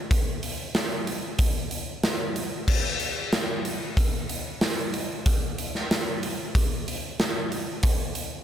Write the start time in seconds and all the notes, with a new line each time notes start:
0.11 kick, open hi-hat
0.43 open hi-hat
0.75 snare, open hi-hat
1.07 open hi-hat
1.39 kick, open hi-hat
1.71 open hi-hat
2.03 snare, open hi-hat
2.36 open hi-hat
2.68 kick, crash
3.00 open hi-hat
3.33 snare, open hi-hat
3.65 open hi-hat
3.97 kick, open hi-hat
4.29 open hi-hat
4.61 snare, open hi-hat
4.94 open hi-hat
5.26 kick, open hi-hat
5.58 open hi-hat
5.75 snare
5.91 snare, open hi-hat
6.23 open hi-hat
6.55 kick, open hi-hat
6.88 open hi-hat
7.20 snare, open hi-hat
7.52 open hi-hat
7.83 kick, open hi-hat
8.15 open hi-hat